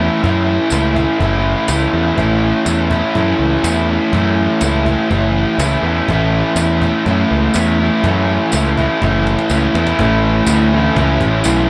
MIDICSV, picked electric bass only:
0, 0, Header, 1, 2, 480
1, 0, Start_track
1, 0, Key_signature, 3, "major"
1, 0, Tempo, 487805
1, 227, Time_signature, 4, 2, 24, 8
1, 11510, End_track
2, 0, Start_track
2, 0, Title_t, "Picked electric bass"
2, 0, Program_c, 0, 34
2, 229, Note_on_c, 0, 42, 90
2, 556, Note_off_c, 0, 42, 0
2, 699, Note_on_c, 0, 37, 80
2, 1029, Note_off_c, 0, 37, 0
2, 1181, Note_on_c, 0, 30, 86
2, 1510, Note_off_c, 0, 30, 0
2, 1660, Note_on_c, 0, 37, 96
2, 1825, Note_off_c, 0, 37, 0
2, 1898, Note_on_c, 0, 40, 88
2, 2064, Note_off_c, 0, 40, 0
2, 2139, Note_on_c, 0, 33, 94
2, 2468, Note_off_c, 0, 33, 0
2, 2615, Note_on_c, 0, 40, 84
2, 2945, Note_off_c, 0, 40, 0
2, 3103, Note_on_c, 0, 42, 85
2, 3267, Note_off_c, 0, 42, 0
2, 3334, Note_on_c, 0, 37, 77
2, 3501, Note_off_c, 0, 37, 0
2, 3574, Note_on_c, 0, 40, 99
2, 3905, Note_off_c, 0, 40, 0
2, 4060, Note_on_c, 0, 42, 87
2, 4389, Note_off_c, 0, 42, 0
2, 4536, Note_on_c, 0, 37, 85
2, 4866, Note_off_c, 0, 37, 0
2, 5022, Note_on_c, 0, 30, 95
2, 5350, Note_off_c, 0, 30, 0
2, 5491, Note_on_c, 0, 37, 99
2, 5659, Note_off_c, 0, 37, 0
2, 5728, Note_on_c, 0, 40, 83
2, 5898, Note_off_c, 0, 40, 0
2, 5983, Note_on_c, 0, 33, 90
2, 6312, Note_off_c, 0, 33, 0
2, 6448, Note_on_c, 0, 40, 78
2, 6782, Note_off_c, 0, 40, 0
2, 6946, Note_on_c, 0, 42, 93
2, 7110, Note_off_c, 0, 42, 0
2, 7191, Note_on_c, 0, 37, 83
2, 7353, Note_off_c, 0, 37, 0
2, 7424, Note_on_c, 0, 40, 94
2, 7753, Note_off_c, 0, 40, 0
2, 7904, Note_on_c, 0, 42, 88
2, 8233, Note_off_c, 0, 42, 0
2, 8390, Note_on_c, 0, 37, 82
2, 8717, Note_off_c, 0, 37, 0
2, 8871, Note_on_c, 0, 30, 85
2, 9198, Note_off_c, 0, 30, 0
2, 9345, Note_on_c, 0, 37, 91
2, 9510, Note_off_c, 0, 37, 0
2, 9585, Note_on_c, 0, 40, 89
2, 9750, Note_off_c, 0, 40, 0
2, 9828, Note_on_c, 0, 33, 94
2, 10234, Note_off_c, 0, 33, 0
2, 10297, Note_on_c, 0, 38, 94
2, 10708, Note_off_c, 0, 38, 0
2, 10784, Note_on_c, 0, 37, 92
2, 10989, Note_off_c, 0, 37, 0
2, 11022, Note_on_c, 0, 33, 84
2, 11227, Note_off_c, 0, 33, 0
2, 11275, Note_on_c, 0, 35, 99
2, 11475, Note_off_c, 0, 35, 0
2, 11510, End_track
0, 0, End_of_file